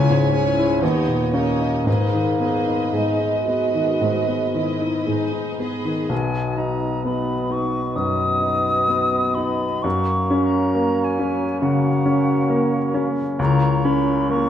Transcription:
Already playing: cello section C#2, grand piano C#2, bassoon C#4, viola section E4 G#4, violin section C#5 G#5
0.10 grand piano G#2
0.33 grand piano C#4, viola section E4 G#4, violin section C#5 G#5
0.57 grand piano E4
0.81 cello section D#2, grand piano D#2, bassoon B3, viola section D#4 G4, violin section C#5 D#5
1.08 grand piano A#2
1.33 bassoon A#3, grand piano C#4, viola section D#4 G4, violin section C#5 D#5
1.60 grand piano D#4
1.86 cello section G#2, grand piano G#2, bassoon A#3, viola section D#4 G#4, violin section B4 D#5
2.13 grand piano D#3
2.40 grand piano B3, viola section D#4 G#4, violin section B4 D#5
2.67 grand piano D#4
2.93 cello section G#2, bassoon G#3, viola section D#4, grand piano G#4
3.20 grand piano D#4
3.48 grand piano B3, viola section F#4, violin section B4 D#5
3.74 grand piano D#3
4.01 grand piano G#2, cello section G#2
4.28 grand piano B3
4.54 grand piano D#3, viola section E4, violin section B4 D#5
4.82 grand piano D#4
5.06 cello section G#2, viola section D#4, grand piano G#4
5.33 grand piano D#4
5.60 grand piano B3, viola section G#4, violin section B4 D#5
5.85 grand piano D#3
6.09 grand piano B1, bassoon B3, clarinet F#4, cor anglais D#5, flute G#5
6.57 grand piano D#4, flute A#5
7.05 grand piano B3, bassoon B3, clarinet F#4, cor anglais D#5, flute B5
7.50 grand piano D#4, flute C#6
7.96 grand piano F#2, bassoon B3, clarinet F#4, cor anglais D#5, flute D#6
8.41 grand piano D#4
8.88 grand piano B3
9.35 grand piano D#4, flute B5
9.83 grand piano F#2, bassoon A#3, clarinet F#4, cor anglais C#5, flute C#6
10.31 grand piano C#4
10.44 flute A#5
10.75 grand piano A#3
11.04 flute G#5
11.19 grand piano C#4
11.60 grand piano C#3, bassoon A#3, clarinet F#4, cor anglais C#5, flute F#5
12.06 grand piano C#4
12.50 grand piano A#3
12.94 grand piano C#4
13.39 grand piano C#2, bassoon A#3, clarinet E4, cor anglais C#5, flute A#5
13.85 grand piano C#4, flute B5
14.30 grand piano A#3, bassoon A#3, clarinet E4, cor anglais C#5, flute C#6

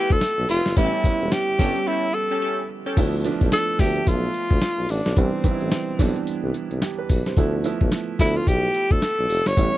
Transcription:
Already playing: grand piano F3 A3 B3 E4, analog polysynth E4 F4 B4, tenor saxophone G4
0.10 tuba D2, tenor saxophone A4, kick, closed hi-hat
0.21 snare, closed hi-hat, tambourine
0.38 tuba B1
0.49 tuba F1, analog polysynth E4 F4 B4, tenor saxophone F4, open hi-hat, tambourine
0.66 tuba G1, snare, closed hi-hat
0.76 tuba A1, grand piano G3 B3 C#4 E4, analog polysynth C#4 G4 A4, tenor saxophone E4, kick, closed hi-hat, tambourine
1.04 grand piano G3 B3 C#4 E4, kick, closed hi-hat, tambourine
1.21 tuba E1, closed hi-hat
1.32 tenor saxophone G4, snare, closed hi-hat, tambourine
1.48 tuba G1
1.59 tuba G1, grand piano G3 B3 C#4 G4, analog polysynth C#4 G4 A4, kick, snare, open hi-hat, tambourine
1.76 closed hi-hat
1.87 analog polysynth C#4 G4 A4, tenor saxophone E4
2.14 tenor saxophone A4
2.31 analog polysynth C#4 G4 A4
2.42 analog polysynth C#4 G4 A4
2.86 analog polysynth C#4 G4 A4
2.97 tuba D2, grand piano F3 A3 B3 E4, kick, closed hi-hat, crash, tambourine
3.25 grand piano F3 A3 B3 D4, closed hi-hat, tambourine
3.41 tuba B1, kick, closed hi-hat
3.52 tenor saxophone A4, snare, closed hi-hat, tambourine
3.79 tuba D2, grand piano F3 A3 B3 E5, tenor saxophone G4, kick, snare, open hi-hat, tambourine
3.96 closed hi-hat
4.07 tuba B1, tenor saxophone F4, kick, closed hi-hat, tambourine
4.34 closed hi-hat
4.51 tuba D2, kick, closed hi-hat
4.62 snare, closed hi-hat, tambourine
4.78 tuba B1
4.89 tuba A1, tenor saxophone D4, open hi-hat, tambourine
5.06 tuba B1, snare, closed hi-hat
5.16 tuba C2, grand piano E3 G3 B3 D4, tenor saxophone C4, kick, closed hi-hat, tambourine
5.44 grand piano E3 G3 D#4 B4, kick, closed hi-hat, tambourine
5.51 grand piano E4
5.61 tuba A1, closed hi-hat
5.71 snare, closed hi-hat, tambourine
5.89 tuba B1
5.99 tuba B1, grand piano E3 G3 B3 D4, kick, open hi-hat, tambourine
6.16 closed hi-hat
6.27 closed hi-hat, tambourine
6.43 tuba C2
6.54 closed hi-hat
6.71 tuba C2, closed hi-hat
6.82 grand piano G4, snare, closed hi-hat, tambourine
6.98 grand piano B4
7.09 tuba B1, kick, open hi-hat, tambourine
7.26 tuba C2, grand piano C5, snare, closed hi-hat
7.37 tuba D2, grand piano F3 A3 B3 E4, kick, closed hi-hat, tambourine
7.64 grand piano F3 A3 B3 E4, closed hi-hat, tambourine
7.81 tuba B1, kick, closed hi-hat
7.92 snare, closed hi-hat, tambourine
8.19 tuba D2, grand piano F3 A3 B3 E4, tenor saxophone E4, kick, snare, open hi-hat, tambourine
8.36 tenor saxophone F4, closed hi-hat
8.47 tuba B1, tenor saxophone G4, kick, closed hi-hat, tambourine
8.74 closed hi-hat
8.91 tuba D2, tenor saxophone A4, kick, closed hi-hat
9.02 snare, closed hi-hat, tambourine
9.19 tuba B1
9.29 tuba F1, open hi-hat, tambourine
9.46 tuba G1, tenor saxophone C#5, snare, closed hi-hat
9.57 tuba A1, grand piano G3 B3 C#4 E4, kick, closed hi-hat, tambourine

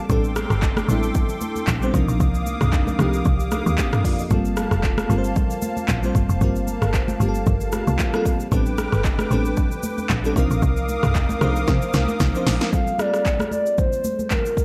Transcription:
Already playing: fm electric piano G3 A#3 C4 F4 G4 A4, accordion D6
0.09 log drum bass A1, fm electric piano G3 B3 C4 D4 A4, accordion A4 G5 C6, kick, low conga, shaker
0.24 shaker
0.36 cross-stick, high conga, shaker
0.50 log drum bass G1, cross-stick, shaker
0.62 kick, clap, shaker
0.77 cross-stick, high conga, shaker
0.88 log drum bass A1, fm electric piano G3 B3 C4 D4 E4, high conga, shaker
1.03 shaker
1.15 kick, low conga, shaker
1.29 shaker
1.41 high conga, shaker
1.56 high conga, shaker
1.67 log drum bass A#1, kick, clap, low conga, shaker
1.81 fm electric piano G3 B3 C4 D4 C5, shaker
1.93 log drum bass C2, fm electric piano F3 C4 D4 D#4 A#4, accordion A#3 F5 D#6, kick, shaker
2.08 log drum bass A#1, shaker
2.20 log drum bass C2, kick, low conga, shaker
2.35 shaker
2.46 high conga, shaker
2.61 log drum bass C2, cross-stick, mid tom, shaker
2.73 kick, clap, shaker
2.87 high conga, shaker
2.99 log drum bass C2, fm electric piano F3 C4 D4 D#4 G4, cross-stick, high conga, shaker
3.13 shaker
3.25 log drum bass C2, kick, low conga, shaker
3.40 shaker
3.51 cross-stick, high conga, shaker
3.66 log drum bass D#2, high conga, shaker
3.78 fm electric piano C4 A4, kick, clap, low conga, shaker
3.93 fm electric piano D4 A#4, cross-stick, mid tom, shaker
4.04 fm electric piano F4 D5, kick, open hi-hat, shaker
4.19 fm electric piano G4 D#5, shaker
4.30 log drum bass G1, fm electric piano G3 A#3 C4 F4 A4, accordion A5, kick, low conga, shaker
4.45 shaker
4.57 cross-stick, high conga, shaker
4.71 log drum bass F1, cross-stick, shaker
4.83 kick, clap, shaker
4.98 cross-stick, high conga, shaker
5.09 log drum bass G1, fm electric piano G3 A#3 C4 F4 A#4, high conga, shaker
5.18 fm electric piano C5
5.24 shaker
5.36 kick, low conga, shaker
5.50 shaker
5.62 high conga, shaker
5.77 high conga, shaker
5.88 log drum bass A#1, kick, clap, low conga, shaker
6.03 fm electric piano G3 A#3 C4 F4 C5, shaker
6.15 log drum bass G1, kick, shaker
6.29 log drum bass F1, shaker
6.41 log drum bass G1, fm electric piano G3 A#3 C4 F4 A#4, kick, low conga, shaker
6.56 shaker
6.67 high conga, shaker
6.82 log drum bass G1, cross-stick, shaker
6.94 kick, clap, shaker
7.08 high conga, shaker
7.19 log drum bass G1, fm electric piano G3 A#3 C4 F4 G4, high conga, shaker
7.29 fm electric piano A4
7.35 shaker
7.46 log drum bass G1, kick, low conga, shaker
7.61 shaker
7.72 cross-stick, high conga, shaker
7.87 log drum bass C2, high conga, shaker
7.99 kick, clap, low conga, shaker
8.13 fm electric piano G3 A#3 C4 F4 A4, cross-stick, shaker
8.25 kick, shaker
8.40 shaker
8.51 log drum bass A1, fm electric piano G3 B3 C4 D4 A4, accordion B4 G5 D6, kick, low conga, shaker
8.66 shaker
8.78 cross-stick, high conga, shaker
8.92 log drum bass G1, cross-stick, shaker
9.04 kick, clap, shaker
9.19 cross-stick, high conga, shaker
9.30 log drum bass A1, fm electric piano G3 B3 C4 D4 A4, high conga, shaker
9.45 shaker
9.57 kick, low conga, shaker
9.71 shaker
9.83 high conga, shaker
9.98 high conga, shaker
10.09 log drum bass A#1, kick, clap, low conga, shaker
10.24 fm electric piano G3 B3 C4 D4 A4, shaker
10.35 log drum bass C2, fm electric piano F3 C4 D4 D#4 A#4, accordion A#4 F5 D6 D#6, kick, shaker
10.51 log drum bass A#1, shaker
10.62 log drum bass C2, kick, low conga, shaker
10.77 shaker
10.89 high conga, shaker
11.03 log drum bass C2, cross-stick, mid tom, shaker
11.15 kick, clap, shaker
11.29 high conga, shaker
11.41 log drum bass C2, fm electric piano F3 C4 D4 D#4 C5, cross-stick, high conga, shaker
11.56 shaker
11.68 log drum bass C3, kick, snare, low conga, shaker
11.82 shaker
11.94 log drum bass C2, snare, high conga, shaker
12.08 high conga, shaker
12.20 log drum bass C2, kick, snare, low conga, shaker
12.34 fm electric piano F3 C4 D4 D#4 C5, shaker
12.47 log drum bass A#1, snare, open hi-hat, shaker
12.61 snare, shaker
12.72 fm electric piano G3 A#3 C4 F4 A4, soft synth lead F5, kick, low conga, shaker
12.87 shaker
12.98 fm electric piano G3 A#3 C4 F4 G#4, soft synth lead D5, cross-stick, high conga, shaker
13.08 fm electric piano A4
13.14 cross-stick, shaker
13.25 kick, clap, shaker
13.40 cross-stick, high conga, shaker
13.51 soft synth lead D5, high conga, shaker
13.66 shaker
13.78 soft synth lead C5, kick, low conga, shaker
13.93 shaker
14.04 high conga, shaker
14.19 high conga, shaker
14.31 soft synth lead A#4, kick, clap, low conga, shaker
14.46 shaker
14.57 kick, shaker

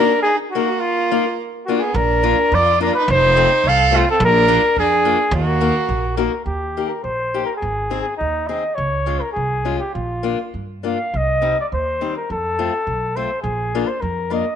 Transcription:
Already playing: violin D4, flugelhorn A#4
0.00 steel-string acoustic guitar A#3 D#4 F#4
0.22 violin D#4, flugelhorn G#4
0.51 violin A#3, steel-string acoustic guitar A#3, flugelhorn F#4
0.56 steel-string acoustic guitar D#4 F#4
0.80 violin A#3, flugelhorn F4
1.11 steel-string acoustic guitar A#3 D#4 F4
1.66 steel-string acoustic guitar A#3 D4 F4, violin A#3, flugelhorn F#4
1.80 violin B3, flugelhorn G#4
1.94 upright bass A#1, violin D4, flugelhorn A#4
2.23 steel-string acoustic guitar A#3 D4 F4
2.52 upright bass F2, violin F4, flugelhorn D5
2.80 steel-string acoustic guitar A#3 D4 F4, flugelhorn A#4
2.85 violin D4
2.94 violin D#4, flugelhorn B4
3.08 upright bass F1, flugelhorn C5
3.13 violin D#4
3.36 steel-string acoustic guitar A3 C4 F4
3.64 upright bass C2
3.68 violin A4, flugelhorn F5
3.91 steel-string acoustic guitar A3 C4 F4
3.96 violin A3, flugelhorn F4
4.11 violin C4, flugelhorn A4
4.20 upright bass A#1, violin D4
4.25 flugelhorn A#4
4.48 steel-string acoustic guitar A#3 D4 F4
4.76 upright bass F2, violin D4, flugelhorn G#4
5.05 steel-string acoustic guitar A#3 D4 F4
5.31 upright bass D#2, violin A#3, flugelhorn F#4
5.61 steel-string acoustic guitar A#3 D#4 F#4
5.89 upright bass A#1
6.17 steel-string acoustic guitar A#3 D#4 F#4, flugelhorn A#4
6.45 upright bass D#2, flugelhorn G4
6.77 steel-string acoustic guitar A#3 D#4 G4
6.89 flugelhorn A#4
7.04 upright bass A#1, flugelhorn C5
7.34 steel-string acoustic guitar A#3 D#4 G4
7.46 flugelhorn A#4
7.57 flugelhorn G#4
7.62 upright bass G#1
7.90 steel-string acoustic guitar C4 D#4 G#4
8.01 flugelhorn G#4
8.17 upright bass D#2, flugelhorn D#4
8.47 steel-string acoustic guitar C4 D#4 G#4, flugelhorn D#5
8.75 upright bass C#2, flugelhorn C#5
9.06 steel-string acoustic guitar G#3 C#4 F4
9.21 flugelhorn A#4
9.33 upright bass C2, flugelhorn G#4
9.65 steel-string acoustic guitar G#3 C#4 F4
9.79 flugelhorn G4
9.94 upright bass A#1, flugelhorn F4
10.23 steel-string acoustic guitar A#3 D4 F4
10.54 upright bass G2
10.83 steel-string acoustic guitar A#3 D4 F4, flugelhorn F5
11.14 upright bass C2, flugelhorn D#5
11.42 steel-string acoustic guitar G3 C4 D#4
11.60 flugelhorn D5
11.72 upright bass D#2, flugelhorn C5
12.01 steel-string acoustic guitar G3 C4 D#4
12.17 flugelhorn A#4
12.30 upright bass F2, flugelhorn A4
12.59 steel-string acoustic guitar A3 C4 F4
12.87 upright bass B1
13.16 steel-string acoustic guitar A3 C4 F4, flugelhorn C5
13.42 upright bass A#1, flugelhorn G#4
13.75 steel-string acoustic guitar A#3 D4 F4
13.87 flugelhorn C5
14.01 upright bass F2, flugelhorn A#4
14.30 steel-string acoustic guitar A#3 D4 F4, flugelhorn D#5

